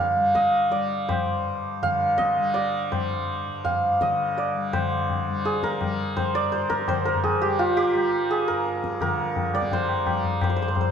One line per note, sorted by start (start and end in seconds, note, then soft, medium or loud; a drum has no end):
0.00 1.25 G2 medium
0.00 1.81 D3 medium
0.00 0.16 G3 medium
0.00 1.08 C5 medium
0.00 0.41 D5 medium
0.00 1.82 F5 medium
0.16 0.70 G3 medium
0.35 0.77 D#5 medium
0.35 tabla ke medium
0.70 2.37 G3 medium
0.70 2.24 D5 medium
0.70 tabla te medium
1.09 2.91 C5 medium
1.09 tabla na medium
1.09 tabla ge medium
1.25 3.46 G2 medium
1.82 3.99 D3 medium
1.82 3.64 F5 medium
1.82 tabla tin medium
1.82 tabla ge medium
2.18 2.60 D#5 medium
2.18 tabla ke medium
2.37 2.92 G3 medium
2.54 4.08 D5 medium
2.54 tabla te medium
2.92 4.54 G3 medium
2.92 4.73 C5 medium
2.92 tabla na medium
2.92 tabla ge medium
3.46 6.36 G2 medium
3.65 5.85 F5 medium
3.65 tabla tin medium
3.65 tabla ge medium
3.99 4.74 D3 medium
3.99 4.44 D#5 medium
3.99 tabla ke medium
4.37 6.34 D5 medium
4.37 tabla te medium
4.54 5.28 G3 medium
4.73 6.88 D3 medium
4.73 6.16 C5 medium
4.73 tabla na loud
4.73 tabla ge medium
5.09 tabla tin medium
5.09 tabla ge medium
5.28 5.82 G3 medium
5.45 7.23 G#4 medium
5.45 tabla te medium
5.54 tabla te medium
5.63 6.69 A#4 medium
5.63 tabla ke medium
5.72 tabla te medium
5.81 7.42 G3 medium
5.81 tabla na medium
5.81 tabla ge medium
6.17 6.52 C5 medium
6.17 tabla tin medium
6.17 tabla ge medium
6.35 8.49 G2 medium
6.35 8.81 D5 loud
6.52 6.88 C5 medium
6.52 tabla te medium
6.62 tabla te medium
6.70 7.05 A#4 medium
6.70 tabla ke medium
6.79 tabla te medium
6.88 9.01 D3 medium
6.88 9.53 C5 medium
6.88 tabla na medium
6.88 tabla ge medium
7.05 8.47 A#4 medium
7.05 tabla te medium
7.15 tabla ge medium
7.24 7.48 G#4 medium
7.24 tabla tin medium
7.24 tabla ge medium
7.42 7.95 G3 medium
7.42 7.76 G4 medium
7.59 10.91 F4 medium
7.59 tabla na medium
7.77 8.37 G4 medium
7.95 9.53 G3 medium
7.95 tabla na medium
8.30 10.91 G#4 medium
8.30 tabla tin medium
8.48 10.58 G2 medium
8.48 9.01 A#4 medium
8.66 tabla te medium
8.75 tabla te medium
8.84 tabla ke medium
8.92 tabla te medium
9.01 10.91 D3 medium
9.01 10.91 A#4 medium
9.01 tabla na medium
9.01 tabla ge medium
9.19 tabla ge soft
9.36 tabla tin medium
9.36 tabla ge medium
9.53 10.06 G3 medium
9.53 10.91 D5 medium
9.53 tabla na medium
9.62 tabla ke medium
9.71 10.43 C5 medium
9.71 tabla tin medium
9.71 tabla ge medium
9.89 tabla na medium
10.06 10.91 G3 medium
10.06 tabla na medium
10.06 tabla ge medium
10.24 tabla ge medium
10.41 10.49 C5 medium
10.41 tabla na loud
10.41 tabla ge medium
10.50 10.56 C5 medium
10.56 10.91 G2 medium
10.56 10.62 C5 medium
10.62 10.68 C5 medium
10.68 10.75 C5 medium
10.75 10.80 C5 medium
10.75 tabla tin medium
10.75 tabla ge medium
10.81 10.91 C5 medium